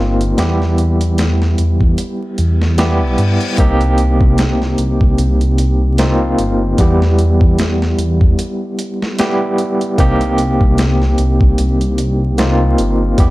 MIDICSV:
0, 0, Header, 1, 5, 480
1, 0, Start_track
1, 0, Tempo, 800000
1, 228, Time_signature, 4, 2, 24, 8
1, 7981, End_track
2, 0, Start_track
2, 0, Title_t, "Tine electric piano"
2, 0, Program_c, 0, 4
2, 0, Control_c, 0, 64, 127
2, 0, Note_on_c, 0, 58, 88
2, 0, Note_on_c, 0, 60, 77
2, 0, Note_on_c, 0, 63, 78
2, 0, Note_on_c, 0, 65, 93
2, 203, Note_off_c, 0, 58, 0
2, 204, Note_off_c, 0, 60, 0
2, 205, Note_off_c, 0, 63, 0
2, 206, Note_off_c, 0, 65, 0
2, 224, Note_on_c, 0, 55, 83
2, 228, Note_on_c, 0, 59, 76
2, 232, Note_on_c, 0, 64, 79
2, 235, Control_c, 0, 64, 0
2, 236, Note_on_c, 0, 67, 96
2, 354, Control_c, 0, 64, 127
2, 1641, Note_off_c, 0, 55, 0
2, 1643, Note_off_c, 0, 59, 0
2, 1645, Note_off_c, 0, 64, 0
2, 1647, Note_off_c, 0, 67, 0
2, 1668, Note_on_c, 0, 55, 88
2, 1669, Note_on_c, 0, 59, 82
2, 1673, Note_on_c, 0, 64, 85
2, 1674, Note_on_c, 0, 67, 100
2, 2123, Note_off_c, 0, 55, 0
2, 2124, Note_off_c, 0, 59, 0
2, 2125, Note_off_c, 0, 64, 0
2, 2126, Note_off_c, 0, 67, 0
2, 2147, Note_on_c, 0, 58, 97
2, 2151, Note_on_c, 0, 60, 90
2, 2155, Note_on_c, 0, 63, 96
2, 2156, Control_c, 0, 64, 0
2, 2159, Note_on_c, 0, 67, 114
2, 2271, Control_c, 0, 64, 127
2, 3563, Note_off_c, 0, 58, 0
2, 3564, Note_off_c, 0, 60, 0
2, 3567, Note_off_c, 0, 63, 0
2, 3569, Note_off_c, 0, 67, 0
2, 3592, Note_on_c, 0, 58, 86
2, 3593, Note_on_c, 0, 60, 82
2, 3595, Note_on_c, 0, 63, 81
2, 3598, Note_on_c, 0, 65, 96
2, 4045, Note_off_c, 0, 58, 0
2, 4046, Note_off_c, 0, 60, 0
2, 4047, Note_off_c, 0, 63, 0
2, 4048, Note_off_c, 0, 65, 0
2, 4071, Note_on_c, 0, 55, 89
2, 4076, Note_on_c, 0, 59, 83
2, 4077, Control_c, 0, 64, 0
2, 4079, Note_on_c, 0, 64, 79
2, 4083, Note_on_c, 0, 67, 97
2, 4179, Control_c, 0, 64, 127
2, 5484, Note_off_c, 0, 55, 0
2, 5487, Note_off_c, 0, 59, 0
2, 5489, Note_off_c, 0, 64, 0
2, 5491, Note_off_c, 0, 67, 0
2, 5512, Note_on_c, 0, 55, 93
2, 5514, Note_on_c, 0, 59, 88
2, 5515, Note_on_c, 0, 64, 89
2, 5518, Note_on_c, 0, 67, 105
2, 5965, Note_off_c, 0, 55, 0
2, 5966, Note_off_c, 0, 59, 0
2, 5967, Note_off_c, 0, 64, 0
2, 5968, Note_off_c, 0, 67, 0
2, 5988, Note_on_c, 0, 58, 99
2, 5993, Note_on_c, 0, 60, 89
2, 5995, Note_on_c, 0, 63, 90
2, 5996, Control_c, 0, 64, 0
2, 6000, Note_on_c, 0, 67, 111
2, 6118, Control_c, 0, 64, 127
2, 7403, Note_off_c, 0, 58, 0
2, 7405, Note_off_c, 0, 60, 0
2, 7407, Note_off_c, 0, 63, 0
2, 7409, Note_off_c, 0, 67, 0
2, 7429, Note_on_c, 0, 58, 85
2, 7432, Note_on_c, 0, 60, 79
2, 7433, Note_on_c, 0, 63, 81
2, 7435, Note_on_c, 0, 65, 98
2, 7884, Note_off_c, 0, 58, 0
2, 7885, Note_off_c, 0, 60, 0
2, 7885, Note_off_c, 0, 63, 0
2, 7887, Note_off_c, 0, 65, 0
2, 7907, Note_on_c, 0, 55, 83
2, 7912, Note_on_c, 0, 59, 81
2, 7915, Note_on_c, 0, 64, 80
2, 7916, Control_c, 0, 64, 0
2, 7919, Note_on_c, 0, 67, 96
2, 7981, Note_off_c, 0, 55, 0
2, 7981, Note_off_c, 0, 59, 0
2, 7981, Note_off_c, 0, 64, 0
2, 7981, Note_off_c, 0, 67, 0
2, 7981, End_track
3, 0, Start_track
3, 0, Title_t, "Detuned saw bass"
3, 0, Program_c, 1, 39
3, 0, Note_on_c, 1, 31, 69
3, 204, Note_off_c, 1, 31, 0
3, 231, Note_on_c, 1, 40, 88
3, 930, Note_off_c, 1, 40, 0
3, 952, Note_on_c, 1, 40, 93
3, 1165, Note_off_c, 1, 40, 0
3, 1431, Note_on_c, 1, 40, 87
3, 1806, Note_on_c, 1, 35, 83
3, 1815, Note_off_c, 1, 40, 0
3, 1897, Note_off_c, 1, 35, 0
3, 1911, Note_on_c, 1, 43, 90
3, 2029, Note_off_c, 1, 43, 0
3, 2150, Note_on_c, 1, 36, 89
3, 2849, Note_off_c, 1, 36, 0
3, 2871, Note_on_c, 1, 36, 101
3, 3085, Note_off_c, 1, 36, 0
3, 3110, Note_on_c, 1, 36, 95
3, 3809, Note_off_c, 1, 36, 0
3, 3831, Note_on_c, 1, 31, 75
3, 4044, Note_off_c, 1, 31, 0
3, 4070, Note_on_c, 1, 40, 86
3, 4769, Note_off_c, 1, 40, 0
3, 4791, Note_on_c, 1, 40, 102
3, 5004, Note_off_c, 1, 40, 0
3, 5990, Note_on_c, 1, 36, 90
3, 6689, Note_off_c, 1, 36, 0
3, 6714, Note_on_c, 1, 36, 106
3, 6926, Note_off_c, 1, 36, 0
3, 6954, Note_on_c, 1, 36, 98
3, 7651, Note_off_c, 1, 36, 0
3, 7674, Note_on_c, 1, 31, 73
3, 7886, Note_off_c, 1, 31, 0
3, 7909, Note_on_c, 1, 40, 98
3, 7981, Note_off_c, 1, 40, 0
3, 7981, End_track
4, 0, Start_track
4, 0, Title_t, "Reverse cymbal"
4, 0, Program_c, 2, 119
4, 1189, Note_on_c, 2, 60, 68
4, 2149, Note_off_c, 2, 60, 0
4, 7981, End_track
5, 0, Start_track
5, 0, Title_t, "Drums"
5, 125, Note_on_c, 9, 42, 62
5, 184, Note_off_c, 9, 42, 0
5, 228, Note_on_c, 9, 42, 75
5, 234, Note_on_c, 9, 38, 104
5, 288, Note_off_c, 9, 42, 0
5, 294, Note_off_c, 9, 38, 0
5, 371, Note_on_c, 9, 38, 32
5, 431, Note_off_c, 9, 38, 0
5, 469, Note_on_c, 9, 42, 62
5, 529, Note_off_c, 9, 42, 0
5, 605, Note_on_c, 9, 42, 64
5, 665, Note_off_c, 9, 42, 0
5, 708, Note_on_c, 9, 42, 81
5, 715, Note_on_c, 9, 38, 116
5, 768, Note_off_c, 9, 42, 0
5, 775, Note_off_c, 9, 38, 0
5, 850, Note_on_c, 9, 38, 45
5, 910, Note_off_c, 9, 38, 0
5, 948, Note_on_c, 9, 42, 65
5, 1008, Note_off_c, 9, 42, 0
5, 1083, Note_on_c, 9, 36, 98
5, 1143, Note_off_c, 9, 36, 0
5, 1188, Note_on_c, 9, 42, 86
5, 1248, Note_off_c, 9, 42, 0
5, 1428, Note_on_c, 9, 42, 67
5, 1488, Note_off_c, 9, 42, 0
5, 1569, Note_on_c, 9, 38, 55
5, 1629, Note_off_c, 9, 38, 0
5, 1668, Note_on_c, 9, 42, 81
5, 1674, Note_on_c, 9, 38, 106
5, 1728, Note_off_c, 9, 42, 0
5, 1734, Note_off_c, 9, 38, 0
5, 1908, Note_on_c, 9, 42, 65
5, 1968, Note_off_c, 9, 42, 0
5, 2043, Note_on_c, 9, 42, 45
5, 2103, Note_off_c, 9, 42, 0
5, 2148, Note_on_c, 9, 42, 89
5, 2149, Note_on_c, 9, 36, 104
5, 2208, Note_off_c, 9, 42, 0
5, 2209, Note_off_c, 9, 36, 0
5, 2284, Note_on_c, 9, 42, 41
5, 2344, Note_off_c, 9, 42, 0
5, 2387, Note_on_c, 9, 42, 68
5, 2447, Note_off_c, 9, 42, 0
5, 2524, Note_on_c, 9, 36, 100
5, 2584, Note_off_c, 9, 36, 0
5, 2628, Note_on_c, 9, 42, 85
5, 2634, Note_on_c, 9, 38, 116
5, 2688, Note_off_c, 9, 42, 0
5, 2694, Note_off_c, 9, 38, 0
5, 2771, Note_on_c, 9, 38, 38
5, 2831, Note_off_c, 9, 38, 0
5, 2868, Note_on_c, 9, 42, 68
5, 2928, Note_off_c, 9, 42, 0
5, 3005, Note_on_c, 9, 36, 93
5, 3065, Note_off_c, 9, 36, 0
5, 3110, Note_on_c, 9, 42, 85
5, 3170, Note_off_c, 9, 42, 0
5, 3246, Note_on_c, 9, 42, 44
5, 3306, Note_off_c, 9, 42, 0
5, 3350, Note_on_c, 9, 42, 69
5, 3410, Note_off_c, 9, 42, 0
5, 3590, Note_on_c, 9, 42, 85
5, 3596, Note_on_c, 9, 38, 105
5, 3650, Note_off_c, 9, 42, 0
5, 3656, Note_off_c, 9, 38, 0
5, 3831, Note_on_c, 9, 42, 75
5, 3891, Note_off_c, 9, 42, 0
5, 4069, Note_on_c, 9, 42, 83
5, 4070, Note_on_c, 9, 36, 109
5, 4129, Note_off_c, 9, 42, 0
5, 4130, Note_off_c, 9, 36, 0
5, 4213, Note_on_c, 9, 38, 44
5, 4273, Note_off_c, 9, 38, 0
5, 4311, Note_on_c, 9, 42, 63
5, 4371, Note_off_c, 9, 42, 0
5, 4446, Note_on_c, 9, 36, 98
5, 4506, Note_off_c, 9, 36, 0
5, 4551, Note_on_c, 9, 42, 91
5, 4558, Note_on_c, 9, 38, 113
5, 4611, Note_off_c, 9, 42, 0
5, 4618, Note_off_c, 9, 38, 0
5, 4694, Note_on_c, 9, 38, 46
5, 4754, Note_off_c, 9, 38, 0
5, 4791, Note_on_c, 9, 42, 69
5, 4851, Note_off_c, 9, 42, 0
5, 4926, Note_on_c, 9, 36, 96
5, 4986, Note_off_c, 9, 36, 0
5, 5032, Note_on_c, 9, 42, 89
5, 5092, Note_off_c, 9, 42, 0
5, 5272, Note_on_c, 9, 42, 70
5, 5332, Note_off_c, 9, 42, 0
5, 5414, Note_on_c, 9, 38, 56
5, 5474, Note_off_c, 9, 38, 0
5, 5511, Note_on_c, 9, 42, 87
5, 5518, Note_on_c, 9, 38, 116
5, 5571, Note_off_c, 9, 42, 0
5, 5578, Note_off_c, 9, 38, 0
5, 5750, Note_on_c, 9, 42, 68
5, 5810, Note_off_c, 9, 42, 0
5, 5887, Note_on_c, 9, 42, 45
5, 5947, Note_off_c, 9, 42, 0
5, 5990, Note_on_c, 9, 36, 110
5, 5990, Note_on_c, 9, 42, 85
5, 6050, Note_off_c, 9, 36, 0
5, 6050, Note_off_c, 9, 42, 0
5, 6125, Note_on_c, 9, 42, 42
5, 6185, Note_off_c, 9, 42, 0
5, 6228, Note_on_c, 9, 42, 66
5, 6288, Note_off_c, 9, 42, 0
5, 6364, Note_on_c, 9, 36, 96
5, 6424, Note_off_c, 9, 36, 0
5, 6468, Note_on_c, 9, 42, 84
5, 6475, Note_on_c, 9, 38, 105
5, 6528, Note_off_c, 9, 42, 0
5, 6535, Note_off_c, 9, 38, 0
5, 6610, Note_on_c, 9, 38, 36
5, 6670, Note_off_c, 9, 38, 0
5, 6708, Note_on_c, 9, 42, 63
5, 6768, Note_off_c, 9, 42, 0
5, 6844, Note_on_c, 9, 36, 98
5, 6904, Note_off_c, 9, 36, 0
5, 6949, Note_on_c, 9, 42, 86
5, 7009, Note_off_c, 9, 42, 0
5, 7086, Note_on_c, 9, 42, 46
5, 7146, Note_off_c, 9, 42, 0
5, 7189, Note_on_c, 9, 42, 72
5, 7249, Note_off_c, 9, 42, 0
5, 7429, Note_on_c, 9, 42, 80
5, 7435, Note_on_c, 9, 38, 108
5, 7489, Note_off_c, 9, 42, 0
5, 7495, Note_off_c, 9, 38, 0
5, 7670, Note_on_c, 9, 42, 73
5, 7730, Note_off_c, 9, 42, 0
5, 7908, Note_on_c, 9, 36, 110
5, 7908, Note_on_c, 9, 42, 89
5, 7968, Note_off_c, 9, 36, 0
5, 7968, Note_off_c, 9, 42, 0
5, 7981, End_track
0, 0, End_of_file